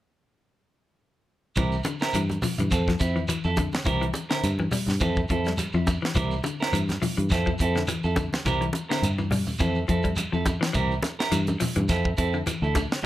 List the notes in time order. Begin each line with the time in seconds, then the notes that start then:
1.56 C2 E3 G3 C4 E4 A#4, kick, closed hi-hat, high conga, low conga, shekere
1.72 shekere
1.84 D3, closed hi-hat, high conga, shekere
1.99 C4 E4 A#4, snare, shekere
2.13 G2 E3, closed hi-hat, shekere
2.29 closed hi-hat, high conga, shekere
2.42 F3, open hi-hat, high conga, low conga, shekere
2.58 G2 E3, closed hi-hat, low conga, shekere
2.71 F2 C4 A4, muted clean electric guitar stroke, kick, closed hi-hat, shekere
2.87 F3, kick, snare, shekere
2.99 F2 C4 E4, muted clean electric guitar stroke, kick, closed hi-hat, shekere
3.16 E3, shekere
3.28 E3, closed hi-hat, high conga, shekere
3.44 F2 E4 A4, shekere
3.56 D3, kick, closed hi-hat, high conga, shekere
3.72 snare, high conga, shekere
3.85 C2 E3 G3 C4 E4 A#4, kick, closed hi-hat, high conga, low conga, shekere
4.01 E3, closed hi-hat, shekere
4.14 closed hi-hat, high conga, shekere
4.30 D3 C4 E4 A#4, snare, shekere
4.43 G2, closed hi-hat, high conga, shekere
4.58 E3, high conga, shekere
4.71 G3, open hi-hat, low conga, shekere
4.86 G2, snare, low conga, shekere
5.00 F2 E3 C4 E4 A4, kick, closed hi-hat, high conga, shekere
5.15 kick, shekere
5.28 F2 F3 C4 E4 A4, kick, closed hi-hat, shekere
5.45 G3, snare, closed hi-hat, shekere
5.57 closed hi-hat, high conga, shekere
5.73 F2 F3 E4, muted clean electric guitar stroke, shekere
5.87 kick, closed hi-hat, high conga, shekere
6.02 E3, snare, shekere
6.15 C2 E3 G3 C4 E4 A#4, kick, closed hi-hat, high conga, low conga, shekere
6.31 shekere
6.44 D3, closed hi-hat, high conga, shekere
6.59 C4 E4 A#4, snare, shekere
6.72 G2 E3, closed hi-hat, high conga, shekere
6.88 snare, closed hi-hat, high conga, shekere
7.01 F3, open hi-hat, low conga, shekere
7.17 G2 E3, closed hi-hat, shekere
7.29 F2 C4 E4 A4, kick, snare, closed hi-hat, shekere
7.46 F3, kick, shekere
7.58 F2 C4 E4 A4, kick, closed hi-hat, shekere
7.75 D3, snare, shekere
7.87 E3, closed hi-hat, high conga, shekere
8.03 F2 E4 A4, shekere
8.16 D3, kick, closed hi-hat, high conga, shekere
8.33 snare, high conga, shekere
8.45 C2 E3 G3 C4 E4 A#4, kick, closed hi-hat, high conga, low conga, shekere
8.61 E3, closed hi-hat, shekere
8.73 closed hi-hat, high conga, shekere
8.89 D3 C4 E4 A#4, snare, shekere
9.02 G2, closed hi-hat, high conga, shekere
9.18 E3, high conga, shekere
9.31 G3, open hi-hat, high conga, low conga, shekere
9.47 E2, low conga, shekere
9.59 F2 E3 C4 E4 A4, kick, closed hi-hat, shekere
9.75 shekere
9.88 F2 F3 C4 E4 A4, kick, closed hi-hat, shekere
10.03 G3, kick, closed hi-hat, shekere
10.16 closed hi-hat, high conga, shekere
10.32 F2 F3 E4 A4, shekere
10.46 kick, closed hi-hat, high conga, shekere
10.61 E3, snare, shekere
10.73 C2 E3 G3 C4 E4 A#4, kick, closed hi-hat, high conga, low conga, shekere
10.91 shekere
11.03 muted clean electric guitar stroke, snare, closed hi-hat, high conga, shekere
11.19 E4 A#4, muted clean electric guitar stroke, snare, shekere
11.32 G2 E3, closed hi-hat, high conga, shekere
11.47 closed hi-hat, high conga, shekere
11.60 F3, open hi-hat, low conga, shekere
11.75 G2 E3, closed hi-hat, low conga, shekere
11.89 F2 C4 E4 A4, kick, snare, closed hi-hat, shekere
12.04 kick, shekere
12.17 F2 C4 E4 A4, kick, closed hi-hat, shekere
12.33 D3, shekere
12.46 E3, closed hi-hat, high conga, shekere
12.62 D2 E4 A4, shekere
12.75 D3, kick, closed hi-hat, high conga, shekere
12.91 snare, shekere
13.03 G3